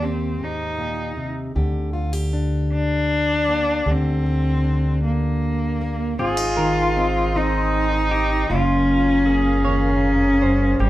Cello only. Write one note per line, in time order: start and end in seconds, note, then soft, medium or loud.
0.04 0.45 C4 medium
0.43 1.28 D#4 medium
2.73 3.93 D4 loud
3.91 5.04 C4 medium
5.05 6.15 A#3 medium
6.21 7.38 F4 medium
7.37 8.55 D#4 medium
8.54 9.67 C#4 loud
9.68 10.77 C#4 medium
10.83 10.90 G3 medium